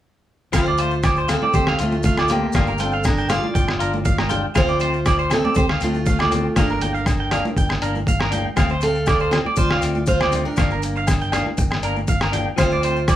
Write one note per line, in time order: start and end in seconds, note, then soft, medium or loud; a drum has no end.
0.52 1.37 D2 loud
0.52 0.69 F3 medium
0.52 0.69 A3 medium
0.52 0.70 C4 medium
0.52 1.25 F4 medium
0.52 1.25 C5 medium
0.52 0.65 F5 medium
0.52 muted clean electric guitar stroke medium
0.52 kick medium
0.52 cross-stick medium
0.52 low agogo medium
0.52 maracas medium
0.66 0.78 D5 medium
0.66 maracas soft
0.78 0.96 A3 soft
0.78 0.94 F4 soft
0.78 0.91 C5 medium
0.78 closed hi-hat soft
0.78 maracas medium
0.91 maracas soft
1.03 1.16 D5 medium
1.03 kick medium
1.03 cross-stick medium
1.03 low agogo medium
1.03 maracas medium
1.16 1.28 C5 medium
1.16 maracas soft
1.28 1.46 A3 soft
1.28 1.53 C4 medium
1.28 1.45 C4 soft
1.28 1.44 F4 soft
1.28 1.53 A4 medium
1.28 cross-stick medium
1.28 closed hi-hat soft
1.28 low conga medium
1.28 low agogo medium
1.28 maracas medium
1.42 1.53 D5 medium
1.42 high conga medium
1.53 1.75 D2 loud
1.53 1.78 C4 medium
1.53 1.77 G4 medium
1.53 1.66 C5 medium
1.53 kick medium
1.53 maracas medium
1.67 1.78 F5 medium
1.67 cross-stick medium
1.67 low agogo medium
1.79 2.42 D2 medium
1.79 2.04 A3 medium
1.79 1.96 C4 soft
1.79 1.95 F4 soft
1.79 2.03 F4 medium
1.79 closed hi-hat medium
1.79 maracas medium
1.83 1.97 A3 soft
1.92 high conga medium
1.92 maracas soft
2.03 2.28 A3 medium
2.03 2.28 F4 medium
2.03 2.16 F5 medium
2.03 kick medium
2.03 high conga medium
2.03 maracas medium
2.17 2.29 D5 medium
2.17 cross-stick medium
2.17 low agogo medium
2.17 maracas soft
2.28 2.77 A#3 medium
2.28 2.46 C4 soft
2.28 2.45 F4 soft
2.28 2.77 G4 medium
2.28 closed hi-hat soft
2.28 low conga medium
2.28 maracas medium
2.33 2.47 A3 soft
2.53 3.38 G1 loud
2.53 2.70 A#3 medium
2.53 2.71 D4 medium
2.53 2.66 F5 medium
2.53 kick medium
2.53 cross-stick medium
2.53 low agogo medium
2.53 maracas medium
2.57 2.71 F4 medium
2.67 2.78 A#4 medium
2.67 maracas soft
2.78 3.04 C4 medium
2.78 2.95 F4 medium
2.78 3.03 A4 medium
2.78 2.91 G5 medium
2.78 closed hi-hat soft
2.78 maracas medium
2.83 2.97 D4 soft
2.92 3.04 F5 medium
2.92 maracas soft
3.04 3.29 D4 medium
3.04 3.29 A#4 loud
3.04 kick medium
3.04 cross-stick medium
3.04 low agogo medium
3.04 maracas medium
3.18 3.29 G5 medium
3.18 maracas soft
3.29 3.47 D4 soft
3.29 3.45 F4 soft
3.29 4.27 F4 medium
3.29 4.26 D5 medium
3.29 3.41 F5 medium
3.29 cross-stick medium
3.29 closed hi-hat soft
3.29 low conga medium
3.29 low agogo medium
3.29 maracas medium
3.44 high conga medium
3.55 3.76 G1 medium
3.55 3.66 G5 medium
3.55 kick medium
3.55 maracas medium
3.68 cross-stick medium
3.68 low agogo medium
3.79 4.43 G1 medium
3.79 3.97 D4 soft
3.79 3.95 F4 medium
3.79 3.91 A#4 medium
3.79 closed hi-hat soft
3.79 maracas medium
3.93 high conga medium
3.93 maracas soft
4.05 4.16 F5 medium
4.05 kick medium
4.05 high conga medium
4.05 maracas medium
4.18 4.29 A#4 medium
4.18 cross-stick medium
4.18 low agogo medium
4.18 maracas soft
4.29 4.47 D4 soft
4.29 4.45 F4 medium
4.29 4.41 G5 medium
4.29 closed hi-hat soft
4.29 low conga medium
4.29 maracas medium
4.55 5.39 D2 loud
4.55 4.71 F3 medium
4.55 4.71 A3 medium
4.55 4.72 C4 medium
4.55 5.27 F4 medium
4.55 5.27 C5 medium
4.55 4.67 F5 medium
4.55 kick medium
4.55 cross-stick medium
4.55 low agogo medium
4.55 maracas medium
4.68 4.79 D5 medium
4.68 maracas soft
4.79 4.97 A3 soft
4.79 4.95 C4 soft
4.79 4.92 C5 medium
4.79 closed hi-hat soft
4.79 maracas medium
4.93 maracas soft
5.06 5.17 D5 medium
5.06 kick medium
5.06 cross-stick medium
5.06 low agogo medium
5.06 maracas medium
5.18 5.29 C5 medium
5.18 maracas soft
5.30 5.48 A3 soft
5.30 5.46 C4 medium
5.30 5.55 C4 medium
5.30 5.55 A4 medium
5.30 cross-stick medium
5.30 closed hi-hat soft
5.30 low conga medium
5.30 low agogo medium
5.30 maracas medium
5.45 5.55 D5 medium
5.45 high conga medium
5.55 5.77 D2 loud
5.55 5.64 C4 medium
5.55 5.64 G4 medium
5.55 5.67 C5 medium
5.55 kick medium
5.55 maracas medium
5.69 5.80 F5 medium
5.69 cross-stick medium
5.69 low agogo medium
5.80 6.44 D2 medium
5.80 6.05 A3 medium
5.80 5.98 A3 soft
5.80 5.96 C4 medium
5.80 6.07 F4 medium
5.80 closed hi-hat soft
5.80 maracas medium
5.94 high conga medium
5.94 maracas soft
6.06 6.54 A3 medium
6.06 6.59 F4 medium
6.06 6.18 F5 medium
6.06 kick medium
6.06 high conga medium
6.06 maracas medium
6.19 6.30 D5 medium
6.19 cross-stick medium
6.19 low agogo medium
6.19 maracas soft
6.31 6.47 C4 soft
6.31 muted clean electric guitar stroke soft
6.31 closed hi-hat soft
6.31 low conga medium
6.31 maracas medium
6.56 7.40 G1 loud
6.56 6.72 F3 medium
6.56 6.72 A#3 medium
6.56 8.03 D4 medium
6.56 6.73 D4 medium
6.56 8.03 A#4 medium
6.56 6.68 F5 medium
6.56 kick medium
6.56 cross-stick medium
6.56 low conga medium
6.56 low agogo medium
6.56 maracas medium
6.69 6.80 A#4 medium
6.69 maracas soft
6.81 6.98 A#3 soft
6.81 6.93 G5 medium
6.81 muted clean electric guitar stroke soft
6.81 closed hi-hat soft
6.81 low conga medium
6.81 maracas medium
6.94 7.05 F5 medium
6.94 maracas soft
7.06 kick medium
7.06 cross-stick medium
7.06 low agogo medium
7.06 maracas medium
7.20 7.30 G5 medium
7.31 7.49 A#3 soft
7.31 7.47 D4 medium
7.31 7.43 F5 medium
7.31 cross-stick medium
7.31 closed hi-hat soft
7.31 low conga medium
7.31 low agogo medium
7.31 maracas medium
7.45 high conga medium
7.45 maracas soft
7.56 7.77 G1 loud
7.56 7.68 G5 medium
7.56 kick medium
7.56 maracas medium
7.69 cross-stick medium
7.69 low agogo medium
7.69 maracas soft
7.82 8.44 G1 medium
7.82 7.99 A#3 soft
7.82 7.97 D4 medium
7.82 7.93 A#4 medium
7.82 closed hi-hat soft
7.82 maracas medium
7.95 high conga medium
7.95 maracas soft
8.07 8.19 F5 medium
8.07 kick medium
8.07 high conga medium
8.07 maracas medium
8.20 8.31 A#4 medium
8.20 cross-stick medium
8.20 low agogo medium
8.31 8.48 A#3 soft
8.31 8.47 D4 medium
8.31 8.44 G5 medium
8.31 closed hi-hat soft
8.31 high conga medium
8.31 low conga medium
8.31 maracas medium
8.56 9.41 D2 medium
8.56 8.72 F3 medium
8.56 8.73 A3 medium
8.56 8.73 C4 medium
8.56 8.69 F5 medium
8.56 kick medium
8.56 cross-stick medium
8.56 low agogo medium
8.56 maracas medium
8.69 8.81 C5 medium
8.69 maracas soft
8.80 8.98 A3 soft
8.80 8.97 C4 soft
8.80 9.29 A4 medium
8.80 9.32 F5 medium
8.80 muted clean electric guitar stroke medium
8.80 closed hi-hat soft
8.80 maracas medium
8.95 maracas soft
9.06 9.19 D5 medium
9.06 kick medium
9.06 cross-stick medium
9.06 low agogo medium
9.06 maracas medium
9.20 9.31 C5 medium
9.20 maracas soft
9.31 9.47 C4 soft
9.31 9.38 F4 medium
9.31 9.39 D5 medium
9.31 muted clean electric guitar stroke soft
9.31 cross-stick medium
9.31 closed hi-hat soft
9.31 low conga medium
9.31 low agogo medium
9.46 9.56 D5 medium
9.46 high conga medium
9.56 9.78 D2 loud
9.56 10.04 F4 medium
9.56 9.69 C5 medium
9.56 10.03 D5 medium
9.56 kick medium
9.56 maracas medium
9.70 9.81 F5 medium
9.70 cross-stick medium
9.70 low agogo medium
9.81 10.45 D2 medium
9.81 9.99 A3 soft
9.81 9.97 C4 medium
9.81 closed hi-hat medium
9.81 maracas medium
9.95 high conga medium
9.95 maracas soft
10.06 10.43 F4 medium
10.06 10.43 C5 medium
10.06 10.19 F5 medium
10.06 kick medium
10.06 high conga medium
10.06 maracas medium
10.20 10.31 D5 medium
10.20 cross-stick medium
10.20 low agogo medium
10.20 maracas soft
10.31 10.49 A3 soft
10.31 10.47 C4 medium
10.31 closed hi-hat soft
10.31 low conga medium
10.31 maracas medium
10.45 11.92 D4 medium
10.45 11.92 A#4 medium
10.56 11.41 G1 medium
10.56 10.73 F3 medium
10.56 10.73 A#3 medium
10.56 10.74 D4 medium
10.56 10.69 F5 medium
10.56 kick medium
10.56 cross-stick medium
10.56 low agogo medium
10.56 maracas medium
10.70 10.82 A#4 medium
10.70 maracas soft
10.82 10.99 A#3 soft
10.82 closed hi-hat soft
10.82 maracas medium
10.96 11.07 F5 medium
10.96 maracas soft
11.07 kick medium
11.07 cross-stick medium
11.07 low agogo medium
11.07 maracas medium
11.21 11.32 G5 medium
11.21 maracas soft
11.32 11.50 A#3 soft
11.32 11.48 D4 medium
11.32 11.45 F5 medium
11.32 cross-stick medium
11.32 closed hi-hat soft
11.32 low conga medium
11.32 low agogo medium
11.32 maracas medium
11.46 high conga medium
11.57 11.79 G1 loud
11.57 muted clean electric guitar stroke medium
11.57 kick medium
11.57 maracas medium
11.71 cross-stick medium
11.71 low agogo medium
11.83 12.46 G1 medium
11.83 12.00 A#3 soft
11.83 11.99 D4 medium
11.83 11.95 A#4 medium
11.83 closed hi-hat soft
11.83 maracas medium
11.96 high conga medium
11.96 maracas soft
12.08 12.20 F5 medium
12.08 kick medium
12.08 high conga medium
12.08 maracas loud
12.21 12.32 A#4 medium
12.21 cross-stick medium
12.21 low agogo medium
12.21 maracas soft
12.32 12.50 A#3 soft
12.32 12.48 D4 medium
12.32 12.45 G5 medium
12.32 closed hi-hat soft
12.32 low conga medium
12.32 maracas medium
12.56 13.16 D2 loud
12.56 12.73 F3 medium
12.56 12.74 A3 medium
12.56 12.74 C4 medium
12.56 13.16 F4 medium
12.56 13.16 C5 medium
12.56 12.70 F5 medium
12.56 kick medium
12.56 cross-stick medium
12.56 low agogo medium
12.56 maracas medium
12.71 12.83 D5 medium
12.71 maracas soft
12.81 13.00 A3 soft
12.81 12.98 C4 medium
12.81 12.95 C5 medium
12.81 closed hi-hat soft
12.81 maracas medium
12.96 maracas soft
13.08 13.16 D5 medium
13.08 kick medium
13.08 cross-stick medium
13.08 low agogo medium
13.08 maracas medium